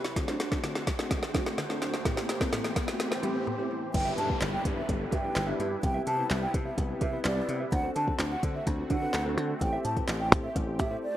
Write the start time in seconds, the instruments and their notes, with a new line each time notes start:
Already playing: supersaw synth C2 C3 E4 B4, riser
0.04 muted clean electric guitar stroke, snare
0.16 supersaw synth D2 D3 F#4 C5, synth arpeggio sound D3, tine electric piano A3 C4 D4 F#4, muted clean electric guitar stroke, kick, snare, closed hi-hat
0.27 clean electric guitar D4 F#4 C5, snare
0.39 clean electric guitar D4 F#4 C5, snare, closed hi-hat
0.51 tine electric piano A3 C4 D4 F#4, synth arpeggio sound D4, muted clean electric guitar stroke, kick, snare
0.63 synth arpeggio sound D3, muted clean electric guitar stroke, snare, closed hi-hat
0.75 muted clean electric guitar stroke, snare
0.87 synth arpeggio sound F#3, kick, snare, closed hi-hat
0.99 tine electric piano A3 C4 D4 F#4, muted clean electric guitar stroke, snare
1.10 muted clean electric guitar stroke, kick, snare, closed hi-hat
1.22 muted clean electric guitar stroke, snare
1.34 synth arpeggio sound F#3, tine electric piano A3 C4 D4 F#4, clean electric guitar D4 F#4 C5, kick, snare, closed hi-hat
1.46 muted clean electric guitar stroke, snare
1.57 synth arpeggio sound D3, muted clean electric guitar stroke, snare, closed hi-hat
1.69 tine electric piano A3 C4 D4 F#4, clean electric guitar D4 F#4 C5, snare
1.81 clean electric guitar D4 F#4 C5, snare, closed hi-hat
1.93 muted clean electric guitar stroke, snare
2.05 supersaw synth A2 E3 G4, synth arpeggio sound A2, tine electric piano A3 C4 E4 G4, muted clean electric guitar stroke, kick, snare, closed hi-hat
2.16 clean electric guitar E4 G4 C5, snare
2.28 clean electric guitar E4 G4 C5, snare, closed hi-hat
2.40 tine electric piano A3 C4 E4 A4, synth arpeggio sound C4, muted clean electric guitar stroke, kick, snare, closed hi-hat
2.52 synth arpeggio sound A2, muted clean electric guitar stroke, snare, closed hi-hat
2.64 muted clean electric guitar stroke, snare
2.76 synth arpeggio sound G3, kick, snare, closed hi-hat
2.87 tine electric piano A3 C4 E4 F#4, muted clean electric guitar stroke, snare
3.00 snare, closed hi-hat
3.11 muted clean electric guitar stroke, snare
3.23 synth arpeggio sound G3, tine electric piano A3 C4 E4 G4, clean electric guitar E4 G4 C5, closed hi-hat
3.35 muted clean electric guitar stroke
3.47 synth arpeggio sound A2, muted clean electric guitar stroke
3.58 tine electric piano A3 C4 E4 G4, clean electric guitar E4 G4 C5
3.70 clean electric guitar E4 G4 C5
3.82 muted clean electric guitar stroke
3.94 slap bass G1, supersaw synth G3 D4 E4 B4, tine electric piano B3 D4 E4 G4 B4, flute G5, muted clean electric guitar stroke, kick, closed hi-hat, crash, downlifter
4.05 clean electric guitar G4 B4 E5
4.17 slap bass G2, clean electric guitar G4 B4 E5, flute A5, closed hi-hat
4.29 tine electric piano B3 D4 E4 G4 B4, muted clean electric guitar stroke, kick
4.41 slap bass G1, muted clean electric guitar stroke, snare, clap, closed hi-hat
4.53 flute G5, muted clean electric guitar stroke
4.65 slap bass G2, tine electric piano B3 D4 E4 G4 B4, kick, closed hi-hat
4.76 flute E5, muted clean electric guitar stroke
4.88 slap bass G1, tine electric piano B3 D4 E4 G4 A4, muted clean electric guitar stroke, kick, closed hi-hat
5.00 muted clean electric guitar stroke
5.11 slap bass G2, clean electric guitar G4 B4 E5, flute G5, kick, closed hi-hat
5.23 tine electric piano B3 D4 E4 G4 B4, muted clean electric guitar stroke
5.35 slap bass G1, snare, clap, closed hi-hat
5.47 tine electric piano B3 D4 E4 G4 B4, clean electric guitar G4 B4 E5
5.59 slap bass G2, clean electric guitar G4 B4 E5, closed hi-hat
5.71 muted clean electric guitar stroke
5.83 slap bass C2, supersaw synth C3 G3 B3, tine electric piano B3 C4 E4 G4 B4, flute G5, muted clean electric guitar stroke, kick, closed hi-hat
5.94 clean electric guitar G4 B4 E5
6.06 slap bass C3, clean electric guitar G4 B4 E5, flute A5, closed hi-hat
6.18 tine electric piano B3 C4 E4 G4 B4, muted clean electric guitar stroke
6.30 slap bass C2, muted clean electric guitar stroke, snare, clap, closed hi-hat
6.42 flute G5, muted clean electric guitar stroke
6.54 slap bass C3, tine electric piano B3 C4 E4 G4 B4, kick, closed hi-hat
6.66 flute E5, muted clean electric guitar stroke
6.77 slap bass C2, tine electric piano B3 C4 E4 G4 B4, muted clean electric guitar stroke, kick, closed hi-hat
6.89 muted clean electric guitar stroke
7.01 slap bass C3, clean electric guitar G4 B4 E5, flute E5, kick, closed hi-hat
7.13 tine electric piano B3 C4 E4 G4 B4, muted clean electric guitar stroke
7.24 slap bass C2, clean electric guitar G4 B4 E5, flute D5, snare, clap, closed hi-hat
7.36 tine electric piano B3 C4 E4 G4 B4, muted clean electric guitar stroke
7.48 slap bass C3, muted clean electric guitar stroke, closed hi-hat
7.60 clean electric guitar G4 B4 E5
7.72 slap bass D2, supersaw synth D3 A3 C4 F#4, tine electric piano C4 D4 F#4 A4 C5, flute F#5, muted clean electric guitar stroke, kick, closed hi-hat
7.84 clean electric guitar D4 F#4 C5
7.95 slap bass D3, clean electric guitar D4 F#4 C5, flute A5, closed hi-hat
8.07 tine electric piano C4 D4 F#4 A4 C5, muted clean electric guitar stroke, kick
8.19 slap bass D2, muted clean electric guitar stroke, snare, clap, closed hi-hat
8.31 flute F#5, muted clean electric guitar stroke
8.43 slap bass D3, tine electric piano C4 D4 F#4 A4 C5, kick, closed hi-hat
8.54 flute E5, muted clean electric guitar stroke
8.66 slap bass D2, tine electric piano C4 D4 F#4 A4 C5, muted clean electric guitar stroke, kick, closed hi-hat
8.78 muted clean electric guitar stroke
8.90 slap bass D3, clean electric guitar D4 F#4 C5, flute F#5, kick, closed hi-hat
9.02 tine electric piano C4 D4 F#4 A4 B4, muted clean electric guitar stroke
9.13 slap bass D2, muted clean electric guitar stroke, snare, clap, closed hi-hat
9.26 tine electric piano C4 D4 F#4 A4 C5, clean electric guitar D4 F#4 C5
9.37 slap bass D3, clean electric guitar D4 F#4 C5, closed hi-hat
9.49 muted clean electric guitar stroke
9.61 slap bass A1, tine electric piano C4 E4 G4 A4 C5, supersaw synth G4, flute G5, muted clean electric guitar stroke, kick, closed hi-hat
9.73 clean electric guitar G4 C5 E5
9.84 slap bass A2, clean electric guitar G4 C5 E5, flute A5, closed hi-hat
9.96 tine electric piano C4 E4 G4 A4 B4, muted clean electric guitar stroke, kick, closed hi-hat
10.08 slap bass A1, muted clean electric guitar stroke, snare, clap, closed hi-hat
10.20 flute G5, muted clean electric guitar stroke
10.32 slap bass A2, tine electric piano C4 E4 G4 A4 C5, kick, closed hi-hat
10.44 flute E5, muted clean electric guitar stroke
10.55 slap bass A1, tine electric piano C4 E4 G4 A4 C5, muted clean electric guitar stroke, kick, closed hi-hat
10.67 muted clean electric guitar stroke
10.79 slap bass A2, clean electric guitar G4 C5 E5, flute E5, kick, closed hi-hat
10.91 tine electric piano C4 E4 G4 A4 C5, muted clean electric guitar stroke
11.03 flute D5